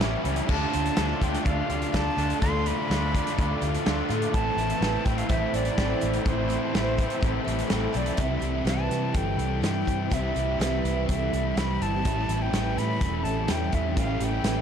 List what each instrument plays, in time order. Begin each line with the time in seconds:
Already playing: ambient pad G4 C#5 A5
0.00 fingered electric bass A1, overdriven electric guitar A2 E3 G3 C#4 E4, twelve-string acoustic guitar G4, snare, closed hi-hat
0.22 fingered electric bass C#2, overdriven electric guitar A2 E3 G3 C#4 E4, twelve-string acoustic guitar G4, closed hi-hat
0.28 overdriven electric guitar E4
0.36 closed hi-hat
0.47 fingered electric bass D2, overdriven electric guitar D3 A3 D4 F4, kick, crash
0.51 ambient pad D5 F5, flute A5
0.71 fingered electric bass D2, overdriven electric guitar A3 D4 F4, twelve-string acoustic guitar C5, closed hi-hat
0.86 closed hi-hat
0.95 fingered electric bass D2, overdriven electric guitar D3 A3 D4 F4, snare, closed hi-hat
1.20 fingered electric bass D2, overdriven electric guitar D3 A3 D4 F4, twelve-string acoustic guitar D5, flute G5, kick, closed hi-hat
1.35 snare, closed hi-hat
1.45 fingered electric bass D2, overdriven electric guitar D3 A3 D4 F4, twelve-string acoustic guitar D5, flute F5, kick, closed hi-hat
1.69 fingered electric bass D2, overdriven electric guitar A3 D4 F4, twelve-string acoustic guitar G4, closed hi-hat
1.82 closed hi-hat
1.93 fingered electric bass D2, overdriven electric guitar D3 A3 D4 F4, twelve-string acoustic guitar A4, flute A5, kick, snare, closed hi-hat
2.17 fingered electric bass D2, overdriven electric guitar D3 A3 D4 F4, twelve-string acoustic guitar A4, closed hi-hat
2.30 closed hi-hat
2.41 fingered electric bass D2, overdriven electric guitar D3 A3 D4 F4, flute C6, kick, closed hi-hat
2.65 overdriven electric guitar A3 D4 F4, twelve-string acoustic guitar C5, flute B5, closed hi-hat
2.90 fingered electric bass D2, overdriven electric guitar D3 A3 D4 F4, snare, closed hi-hat
3.14 overdriven electric guitar D3 A3 D4 F4, twelve-string acoustic guitar D5, kick, closed hi-hat
3.27 snare, closed hi-hat
3.37 fingered electric bass D2, overdriven electric guitar D3 A3 D4 F4, twelve-string acoustic guitar D5, kick, closed hi-hat
3.61 fingered electric bass D2, overdriven electric guitar A3 D4 F4, twelve-string acoustic guitar G4, closed hi-hat
3.74 closed hi-hat
3.85 fingered electric bass D2, overdriven electric guitar D3 A3 D4, twelve-string acoustic guitar A4, snare, closed hi-hat
3.89 overdriven electric guitar F4
4.09 fingered electric bass A2, overdriven electric guitar D3 A3 D4 F4, twelve-string acoustic guitar A4, closed hi-hat
4.22 closed hi-hat
4.32 fingered electric bass A1, overdriven electric guitar A2 E3 A3 C4 E4, ambient pad C4 E4 A5, flute A5, kick, closed hi-hat
4.56 fingered electric bass A1, overdriven electric guitar A3 C4 E4, twelve-string acoustic guitar B4, closed hi-hat
4.70 closed hi-hat
4.81 fingered electric bass A1, overdriven electric guitar A2 E3 A3 C4 E4, snare, closed hi-hat
5.05 fingered electric bass A1, overdriven electric guitar A2 E3 A3 C4 E4, twelve-string acoustic guitar C5, flute G5, kick, closed hi-hat
5.18 flute F5, closed hi-hat
5.29 fingered electric bass A1, overdriven electric guitar A2 E3 A3 C4 E4, twelve-string acoustic guitar C5, flute E5, kick, closed hi-hat
5.53 fingered electric bass A1, overdriven electric guitar A3 C4 E4, twelve-string acoustic guitar G4, flute D5, closed hi-hat
5.65 closed hi-hat
5.76 fingered electric bass A1, overdriven electric guitar A2 E3 A3 C4, twelve-string acoustic guitar A4, kick, snare, closed hi-hat
5.80 overdriven electric guitar E4
6.01 fingered electric bass A1, overdriven electric guitar A2 E3 A3 C4 E4, twelve-string acoustic guitar A4, closed hi-hat
6.14 closed hi-hat
6.25 fingered electric bass A1, overdriven electric guitar A2 E3 A3 C4 E4, flute C5, kick, closed hi-hat
6.49 overdriven electric guitar C4 E4, twelve-string acoustic guitar C5, closed hi-hat
6.53 overdriven electric guitar A3
6.73 fingered electric bass A1, overdriven electric guitar A2 E3 A3 C4 E4, snare, closed hi-hat
6.98 overdriven electric guitar A2 E3 A3 C4 E4, twelve-string acoustic guitar C5, kick, closed hi-hat
7.10 closed hi-hat
7.21 fingered electric bass A1, overdriven electric guitar A2 E3, twelve-string acoustic guitar C5, kick, closed hi-hat
7.25 overdriven electric guitar A3 C4 E4
7.44 fingered electric bass A1, overdriven electric guitar C4 E4, twelve-string acoustic guitar G4, closed hi-hat
7.50 overdriven electric guitar A3
7.59 closed hi-hat
7.67 fingered electric bass A1, overdriven electric guitar A2 E3, twelve-string acoustic guitar A4, snare, closed hi-hat
7.72 overdriven electric guitar A3 C4 E4
7.93 fingered electric bass B1, overdriven electric guitar A2 E3 C4 E4, twelve-string acoustic guitar A4, flute D5, closed hi-hat
7.98 overdriven electric guitar A3
8.06 closed hi-hat
8.17 fingered electric bass C2, overdriven electric guitar C3 E3 G3 C4, ambient pad C4 E4 B5, twelve-string acoustic guitar E4, kick, closed hi-hat
8.21 overdriven electric guitar E4, flute E5
8.40 fingered electric bass C2, overdriven electric guitar E4, twelve-string acoustic guitar G4, closed hi-hat
8.44 overdriven electric guitar G3 C4
8.65 fingered electric bass C2, overdriven electric guitar E3 G3 C4, twelve-string acoustic guitar B4, flute A5, snare, closed hi-hat
8.69 overdriven electric guitar E4
8.90 fingered electric bass C3, overdriven electric guitar G3 C4 E4, snare, closed hi-hat
9.14 fingered electric bass G1, twelve-string acoustic guitar A4, flute G5, kick, closed hi-hat
9.37 fingered electric bass C2, overdriven electric guitar C4 E4, closed hi-hat
9.42 overdriven electric guitar G3
9.62 fingered electric bass G2, overdriven electric guitar E3 G3 C4, twelve-string acoustic guitar G4, flute G5, snare, closed hi-hat
9.66 overdriven electric guitar E4
9.85 fingered electric bass G2, twelve-string acoustic guitar G4, kick, closed hi-hat
10.10 fingered electric bass C2, overdriven electric guitar C3 E3 G3 C4 E4, twelve-string acoustic guitar E4, flute E5, kick, closed hi-hat
10.34 fingered electric bass C2, overdriven electric guitar G3 C4 E4, twelve-string acoustic guitar G4, closed hi-hat
10.59 fingered electric bass C2, overdriven electric guitar E3 G3 C4 E4, twelve-string acoustic guitar B4, flute E5, snare, closed hi-hat
10.84 fingered electric bass C2, overdriven electric guitar G3 C4 E4, closed hi-hat
11.09 fingered electric bass C2, twelve-string acoustic guitar A4, flute E5, kick, closed hi-hat
11.33 fingered electric bass C2, overdriven electric guitar G3 C4 E4, closed hi-hat
11.56 fingered electric bass C2, overdriven electric guitar E3 G3 C4 E4, twelve-string acoustic guitar G4, flute B5, snare, closed hi-hat
11.80 fingered electric bass G1, twelve-string acoustic guitar G4, flute A5, closed hi-hat
12.04 fingered electric bass A1, overdriven electric guitar A2 E3 G3 C#4 E4, ambient pad C#4 A4 G5, twelve-string acoustic guitar E4, kick, closed hi-hat
12.28 fingered electric bass A1, overdriven electric guitar G3 C#4 E4, twelve-string acoustic guitar G4, closed hi-hat
12.42 flute G5
12.53 fingered electric bass A1, overdriven electric guitar E3 G3 C#4 E4, twelve-string acoustic guitar B4, snare, closed hi-hat
12.76 fingered electric bass A2, overdriven electric guitar G3 C#4 E4, flute B5, snare, closed hi-hat
13.01 fingered electric bass E1, twelve-string acoustic guitar A4, kick, closed hi-hat
13.24 fingered electric bass A1, overdriven electric guitar C#4 E4, flute A5, closed hi-hat
13.28 overdriven electric guitar G3
13.48 fingered electric bass E2, overdriven electric guitar E3 G3 C#4 E4, twelve-string acoustic guitar G4, flute G5, snare, closed hi-hat
13.72 fingered electric bass E2, twelve-string acoustic guitar G4, flute E5, kick, closed hi-hat
13.96 fingered electric bass A1, overdriven electric guitar A2 E3 G3 C#4, twelve-string acoustic guitar E4, flute F5, kick, closed hi-hat
14.00 overdriven electric guitar E4
14.20 fingered electric bass A1, overdriven electric guitar G3 C#4 E4, twelve-string acoustic guitar G4, flute G5, closed hi-hat
14.43 fingered electric bass A1, overdriven electric guitar E3 G3, twelve-string acoustic guitar B4, snare, closed hi-hat
14.48 overdriven electric guitar C#4 E4